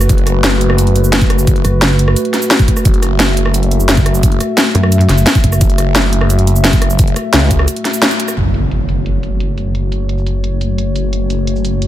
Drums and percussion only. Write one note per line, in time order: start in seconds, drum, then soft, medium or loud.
0.01 cross-stick soft
0.01 cabasa medium
0.09 kick loud
0.09 closed hi-hat medium
0.09 cabasa soft
0.18 closed hi-hat soft
0.27 cross-stick soft
0.27 closed hi-hat medium
0.27 cabasa soft
0.44 snare loud
0.44 closed hi-hat medium
0.44 cabasa soft
0.61 closed hi-hat medium
0.70 cross-stick medium
0.78 closed hi-hat medium
0.78 cabasa soft
0.87 closed hi-hat soft
0.96 closed hi-hat medium
0.96 cabasa soft
1.04 cabasa medium
1.13 snare loud
1.13 closed hi-hat medium
1.13 cabasa soft
1.21 kick loud
1.21 closed hi-hat soft
1.21 cabasa soft
1.30 cross-stick medium
1.30 closed hi-hat medium
1.39 cabasa medium
1.47 kick loud
1.47 closed hi-hat medium
1.47 cabasa soft
1.56 closed hi-hat soft
1.65 cross-stick soft
1.65 closed hi-hat medium
1.65 cabasa soft
1.82 snare loud
1.82 closed hi-hat medium
1.82 cabasa soft
1.99 closed hi-hat medium
2.08 cross-stick medium
2.16 closed hi-hat medium
2.16 cabasa soft
2.25 closed hi-hat soft
2.34 snare soft
2.34 closed hi-hat medium
2.34 cabasa soft
2.42 cabasa medium
2.51 snare loud
2.51 closed hi-hat medium
2.51 cabasa soft
2.59 kick loud
2.59 closed hi-hat soft
2.59 cabasa soft
2.68 kick medium
2.68 closed hi-hat medium
2.77 cross-stick soft
2.77 cabasa medium
2.85 kick loud
2.85 closed hi-hat medium
2.85 cabasa soft
2.94 closed hi-hat soft
3.03 cross-stick soft
3.03 closed hi-hat medium
3.03 cabasa soft
3.20 snare loud
3.20 closed hi-hat medium
3.20 cabasa soft
3.37 closed hi-hat medium
3.46 cross-stick medium
3.54 closed hi-hat medium
3.54 cabasa medium
3.63 closed hi-hat soft
3.71 closed hi-hat medium
3.71 cabasa soft
3.80 cabasa medium
3.89 snare loud
3.89 closed hi-hat medium
3.89 cabasa medium
3.97 kick loud
3.97 closed hi-hat soft
3.97 cabasa soft
4.06 cross-stick medium
4.06 closed hi-hat medium
4.15 cabasa medium
4.23 kick loud
4.23 closed hi-hat medium
4.23 cabasa medium
4.32 closed hi-hat soft
4.40 cross-stick soft
4.40 closed hi-hat medium
4.40 cabasa soft
4.58 snare loud
4.58 closed hi-hat medium
4.58 cabasa medium
4.75 closed hi-hat medium
4.83 cross-stick medium
4.92 closed hi-hat medium
4.92 cabasa soft
5.01 closed hi-hat soft
5.09 snare soft
5.09 closed hi-hat medium
5.09 cabasa soft
5.18 cabasa medium
5.26 snare loud
5.26 closed hi-hat medium
5.26 cabasa medium
5.35 kick loud
5.35 closed hi-hat soft
5.35 cabasa soft
5.44 kick medium
5.44 closed hi-hat medium
5.52 cross-stick soft
5.52 cabasa medium
5.61 kick loud
5.61 closed hi-hat loud
5.61 cabasa medium
5.70 closed hi-hat soft
5.78 cross-stick soft
5.78 closed hi-hat medium
5.78 cabasa soft
5.95 snare loud
5.95 closed hi-hat loud
5.95 cabasa medium
6.13 closed hi-hat medium
6.21 cross-stick medium
6.30 closed hi-hat loud
6.30 cabasa medium
6.39 closed hi-hat soft
6.47 closed hi-hat medium
6.47 cabasa soft
6.56 cabasa medium
6.64 snare loud
6.64 closed hi-hat medium
6.64 cabasa medium
6.73 kick loud
6.73 closed hi-hat soft
6.73 cabasa soft
6.82 cross-stick medium
6.82 closed hi-hat medium
6.90 cabasa medium
6.99 kick loud
6.99 closed hi-hat loud
6.99 cabasa medium
7.08 closed hi-hat soft
7.16 cross-stick soft
7.16 closed hi-hat medium
7.16 cabasa soft
7.33 snare loud
7.33 closed hi-hat loud
7.33 cabasa soft
7.51 kick medium
7.51 closed hi-hat medium
7.51 cabasa soft
7.59 cross-stick medium
7.68 closed hi-hat loud
7.68 cabasa medium
7.76 closed hi-hat soft
7.85 snare soft
7.85 closed hi-hat medium
7.85 cabasa soft
7.94 cabasa medium
8.02 snare loud
8.02 closed hi-hat loud
8.02 cabasa medium
8.11 closed hi-hat soft
8.11 cabasa soft
8.20 closed hi-hat medium
8.28 cross-stick soft
8.28 cabasa medium
8.37 closed hi-hat medium
8.54 closed hi-hat medium
8.54 cabasa medium
8.71 closed hi-hat medium
8.80 cabasa soft
8.89 closed hi-hat medium
8.89 cabasa medium
9.06 closed hi-hat medium
9.23 closed hi-hat medium
9.23 cabasa medium
9.40 closed hi-hat medium
9.40 cabasa soft
9.58 closed hi-hat medium
9.58 cabasa medium
9.75 closed hi-hat medium
9.92 closed hi-hat medium
9.92 cabasa medium
10.09 closed hi-hat medium
10.18 cabasa soft
10.27 closed hi-hat medium
10.27 cabasa medium
10.44 closed hi-hat medium
10.61 closed hi-hat medium
10.61 cabasa medium
10.78 closed hi-hat medium
10.78 cabasa soft
10.96 closed hi-hat medium
10.96 cabasa medium
11.13 closed hi-hat medium
11.30 closed hi-hat medium
11.30 cabasa medium
11.47 closed hi-hat medium
11.56 cabasa soft
11.65 closed hi-hat medium
11.65 cabasa medium
11.82 closed hi-hat medium